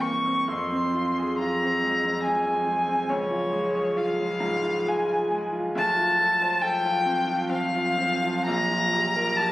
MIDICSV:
0, 0, Header, 1, 4, 480
1, 0, Start_track
1, 0, Tempo, 906344
1, 258, Time_signature, 3, 2, 24, 8
1, 734, Tempo, 860832
1, 2174, Tempo, 898204
1, 3134, Tempo, 860832
1, 4094, Tempo, 983607
1, 4574, Tempo, 904977
1, 5130, End_track
2, 0, Start_track
2, 0, Title_t, "Violin"
2, 0, Program_c, 0, 40
2, 5, Note_on_c, 0, 85, 87
2, 255, Note_on_c, 0, 84, 84
2, 263, Note_off_c, 0, 85, 0
2, 733, Note_off_c, 0, 84, 0
2, 735, Note_on_c, 0, 82, 91
2, 1204, Note_off_c, 0, 82, 0
2, 1207, Note_on_c, 0, 80, 93
2, 1685, Note_on_c, 0, 73, 98
2, 1693, Note_off_c, 0, 80, 0
2, 2177, Note_on_c, 0, 77, 103
2, 2185, Note_off_c, 0, 73, 0
2, 2662, Note_on_c, 0, 80, 96
2, 2670, Note_off_c, 0, 77, 0
2, 2901, Note_off_c, 0, 80, 0
2, 3139, Note_on_c, 0, 81, 127
2, 3610, Note_on_c, 0, 79, 127
2, 3618, Note_off_c, 0, 81, 0
2, 4096, Note_on_c, 0, 77, 121
2, 4103, Note_off_c, 0, 79, 0
2, 4563, Note_off_c, 0, 77, 0
2, 4566, Note_on_c, 0, 82, 127
2, 5050, Note_on_c, 0, 81, 125
2, 5058, Note_off_c, 0, 82, 0
2, 5130, Note_off_c, 0, 81, 0
2, 5130, End_track
3, 0, Start_track
3, 0, Title_t, "Grand piano"
3, 0, Program_c, 1, 0
3, 0, Control_c, 1, 64, 127
3, 0, Note_on_c, 1, 43, 58
3, 0, Note_on_c, 1, 58, 48
3, 0, Note_on_c, 1, 60, 46
3, 0, Note_on_c, 1, 64, 51
3, 0, Note_on_c, 1, 70, 48
3, 3, Note_off_c, 1, 58, 0
3, 3, Note_on_c, 1, 58, 53
3, 88, Note_off_c, 1, 60, 0
3, 137, Note_on_c, 1, 60, 48
3, 204, Note_off_c, 1, 58, 0
3, 237, Note_off_c, 1, 43, 0
3, 253, Note_on_c, 1, 41, 66
3, 258, Note_off_c, 1, 60, 0
3, 267, Control_c, 1, 64, 0
3, 271, Note_off_c, 1, 64, 0
3, 273, Note_off_c, 1, 70, 0
3, 357, Control_c, 1, 64, 127
3, 380, Note_on_c, 1, 60, 52
3, 499, Note_on_c, 1, 65, 52
3, 570, Note_off_c, 1, 60, 0
3, 624, Note_on_c, 1, 68, 53
3, 688, Note_off_c, 1, 65, 0
3, 739, Note_on_c, 1, 65, 57
3, 812, Note_off_c, 1, 68, 0
3, 867, Note_on_c, 1, 60, 55
3, 931, Note_off_c, 1, 65, 0
3, 986, Note_on_c, 1, 56, 56
3, 1054, Note_off_c, 1, 60, 0
3, 1108, Note_on_c, 1, 60, 54
3, 1173, Note_off_c, 1, 56, 0
3, 1223, Note_on_c, 1, 56, 53
3, 1292, Note_off_c, 1, 60, 0
3, 1334, Note_on_c, 1, 60, 53
3, 1409, Note_off_c, 1, 56, 0
3, 1447, Note_on_c, 1, 56, 58
3, 1523, Note_off_c, 1, 60, 0
3, 1570, Note_on_c, 1, 60, 58
3, 1640, Note_off_c, 1, 56, 0
3, 1665, Note_off_c, 1, 41, 0
3, 1688, Note_on_c, 1, 37, 74
3, 1690, Note_off_c, 1, 60, 0
3, 1699, Control_c, 1, 64, 0
3, 1794, Control_c, 1, 64, 127
3, 1805, Note_on_c, 1, 65, 59
3, 1923, Note_on_c, 1, 56, 66
3, 2000, Note_off_c, 1, 65, 0
3, 2048, Note_on_c, 1, 68, 59
3, 2122, Note_off_c, 1, 56, 0
3, 2172, Note_on_c, 1, 65, 66
3, 2244, Note_off_c, 1, 68, 0
3, 2293, Note_on_c, 1, 56, 68
3, 2365, Note_off_c, 1, 65, 0
3, 2406, Note_on_c, 1, 44, 63
3, 2487, Note_off_c, 1, 56, 0
3, 2527, Note_on_c, 1, 65, 69
3, 2605, Note_off_c, 1, 44, 0
3, 2652, Note_on_c, 1, 56, 65
3, 2726, Note_off_c, 1, 65, 0
3, 2768, Note_on_c, 1, 65, 66
3, 2848, Note_off_c, 1, 56, 0
3, 2887, Note_on_c, 1, 56, 67
3, 2965, Note_off_c, 1, 65, 0
3, 3005, Note_on_c, 1, 65, 67
3, 3082, Note_off_c, 1, 56, 0
3, 3113, Note_off_c, 1, 37, 0
3, 3126, Note_on_c, 1, 38, 84
3, 3128, Note_off_c, 1, 65, 0
3, 3143, Control_c, 1, 64, 0
3, 3228, Control_c, 1, 64, 127
3, 3244, Note_on_c, 1, 65, 66
3, 3372, Note_on_c, 1, 69, 73
3, 3439, Note_off_c, 1, 65, 0
3, 3497, Note_on_c, 1, 72, 74
3, 3561, Note_off_c, 1, 69, 0
3, 3612, Note_on_c, 1, 69, 77
3, 3682, Note_off_c, 1, 72, 0
3, 3737, Note_on_c, 1, 65, 78
3, 3799, Note_off_c, 1, 69, 0
3, 3853, Note_on_c, 1, 60, 75
3, 3924, Note_off_c, 1, 65, 0
3, 3974, Note_on_c, 1, 65, 76
3, 4047, Note_off_c, 1, 60, 0
3, 4097, Note_on_c, 1, 60, 68
3, 4166, Note_off_c, 1, 65, 0
3, 4213, Note_on_c, 1, 65, 72
3, 4284, Note_off_c, 1, 60, 0
3, 4332, Note_on_c, 1, 60, 74
3, 4409, Note_off_c, 1, 65, 0
3, 4459, Note_on_c, 1, 65, 76
3, 4528, Note_off_c, 1, 60, 0
3, 4552, Note_off_c, 1, 38, 0
3, 4573, Note_on_c, 1, 34, 92
3, 4576, Note_off_c, 1, 65, 0
3, 4585, Control_c, 1, 64, 0
3, 4662, Control_c, 1, 64, 127
3, 4699, Note_on_c, 1, 65, 72
3, 4820, Note_on_c, 1, 67, 77
3, 4891, Note_off_c, 1, 65, 0
3, 4940, Note_on_c, 1, 70, 82
3, 5009, Note_off_c, 1, 67, 0
3, 5064, Note_on_c, 1, 67, 80
3, 5128, Note_off_c, 1, 70, 0
3, 5130, Note_off_c, 1, 34, 0
3, 5130, Note_off_c, 1, 67, 0
3, 5130, End_track
4, 0, Start_track
4, 0, Title_t, "Cello"
4, 0, Program_c, 2, 42
4, 0, Note_on_c, 2, 52, 56
4, 240, Note_off_c, 2, 52, 0
4, 251, Note_on_c, 2, 53, 66
4, 3109, Note_off_c, 2, 53, 0
4, 3127, Note_on_c, 2, 53, 95
4, 5130, Note_off_c, 2, 53, 0
4, 5130, End_track
0, 0, End_of_file